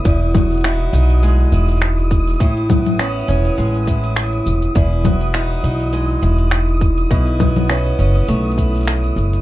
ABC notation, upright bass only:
X:1
M:4/4
L:1/8
Q:"Swing 16ths" 1/4=102
K:E
V:1 name="Upright bass" clef=bass
E,,,3 B,,,2 E,,,3 | A,,,3 E,,, A,,,3 E,,, | E,,,3 B,,,2 E,,,3 | B,,,3 F,,, B,,,3 F,,, |]